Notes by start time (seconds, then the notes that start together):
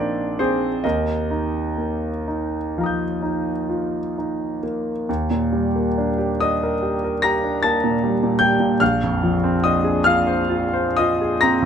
Already playing: A#1 F3 D4 D#4 A#4 C5 D5 D#5 F5
0.39 C4 G#4 C5
0.84 D#2 A#4 D#5
1.31 D#4
1.78 A#3
2.28 D#4
2.78 F3 F5 A#5
2.84 D#6 G6
3.23 D#4
3.69 F4
4.18 D#4
4.63 A#3
5.09 D#2
5.30 A#2
5.53 G3
5.76 A#3
5.98 D4
6.18 G4
6.41 D4 D#5 D#6
6.63 A#4
6.82 G4
7.04 A#4
7.22 G4 A#5 A#6
7.44 D4
7.63 A#3 A5 A6
7.84 A#2
8.04 G3
8.23 A#2
8.39 G3 G5 G6
8.60 A#2
8.80 A#1 F5 F6
9.03 F2
9.23 F3
9.44 C4
9.64 D4 D#5 D#6
9.84 G#4
10.04 F4 F5 F6
10.27 C5
10.49 F4
10.73 C5
10.97 F4 D#5 D#6
11.21 G#4
11.41 C4 A#5 A#6
11.62 F2